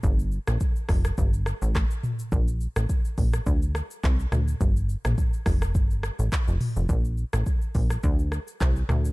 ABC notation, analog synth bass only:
X:1
M:4/4
L:1/16
Q:"Swing 16ths" 1/4=105
K:Fmix
V:1 name="Analog synth bass" clef=bass
G,,,3 B,,, z2 F,,,2 G,,,3 A,,,2 z3 | B,,,3 A,,, z2 B,,,2 D,,3 z C,,2 D,,2 | G,,,3 B,,, z2 F,,,2 G,,,3 A,,, z F,,, z F,,, | B,,,3 A,,, z2 B,,,2 D,,3 z C,,2 D,,2 |]